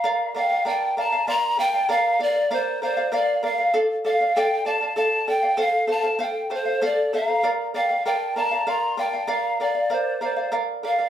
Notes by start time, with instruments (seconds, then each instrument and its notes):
Already playing: pan flute F5, quena A#5
0.04 charango A#4 D5 F5
0.34 charango A#4 D5 F5, pan flute F5, quena G5
0.50 charango D5 F5
0.65 charango A#4 D5 F5, pan flute G5, quena A5
0.97 charango A#4 D5 F5, pan flute A5, quena A#5
1.12 charango D5 F5
1.27 charango A#4 D5 F5, pan flute A#5, quena C6
1.57 charango A#4 D5 F5, pan flute G5, quena A5
1.74 charango D5 F5
1.89 charango A#4 D5 F5, pan flute F5
1.94 quena A#5
2.19 charango A#4 D5 F5, pan flute D5, quena F5
2.35 charango D5 F5
2.51 charango A#4 D5 F5, pan flute C5, quena D5
2.82 charango A#4 D5 F5, pan flute C5, quena D5
2.97 charango D5 F5
3.12 charango A#4 D5 F5, pan flute D5, quena F5
3.43 charango A#4 D5 F5, quena F5, pan flute F5
3.58 charango D5 F5
3.74 charango A4 D5 F5
4.04 charango A4 D5 F5, pan flute F5, quena F5
4.20 charango D5 F5
4.36 charango A4 D5 F5, pan flute G5, quena G5
4.65 charango A4 D5 F5, pan flute A5, quena A5
4.81 charango D5 F5
4.96 charango A4 D5 F5, pan flute A5, quena A5
5.27 charango A4 D5 F5, quena G5, pan flute G5
5.42 charango D5 F5
5.57 charango A4 C5 F5, quena F5, pan flute F5
5.87 charango A4 C5 F5, quena A5, pan flute A5
6.03 charango C5 F5
6.19 charango A4 C5 F5, pan flute G5
6.23 quena G5
6.50 charango A4 C5 F5
6.55 pan flute C5, quena C5
6.65 charango C5 F5
6.81 charango A4 C5 F5, pan flute D5
6.86 quena D5
7.13 charango A4 C5 F5, pan flute F5, quena A#5
7.28 charango C5 F5
7.43 charango A#4 D5 F5
7.74 charango A#4 D5 F5, pan flute F5, quena G5
7.89 charango D5 F5
8.06 charango A#4 D5 F5, pan flute G5, quena A5
8.36 charango A#4 D5 F5, pan flute A5, quena A#5
8.51 charango D5 F5
8.67 charango A#4 D5 F5, pan flute A#5, quena C6
8.97 charango A#4 D5 F5, pan flute G5
9.02 quena A#5
9.07 quena A5
9.13 charango D5 F5
9.27 charango A#4 D5 F5, pan flute F5
9.33 quena A#5
9.60 charango A#4 D5 F5, pan flute D5, quena F5
9.74 charango D5 F5
9.90 charango A#4 D5 F5, pan flute C5, quena D5
10.21 charango A#4 D5 F5, pan flute C5, quena D5
10.37 charango D5 F5
10.52 charango A#4 D5 F5
10.83 charango A#4 D5 F5, pan flute F5, quena F5
10.99 charango D5 F5